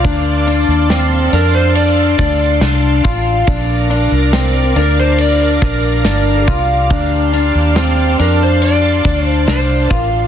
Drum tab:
RD |xxxxxxxx|xxxxxxxx|xxxxxxxx|
TB |--x---x-|--x---x-|--x---x-|
SD |--o---o-|--o---o-|--o---o-|
BD |o----o-o|o----o-o|o----o-o|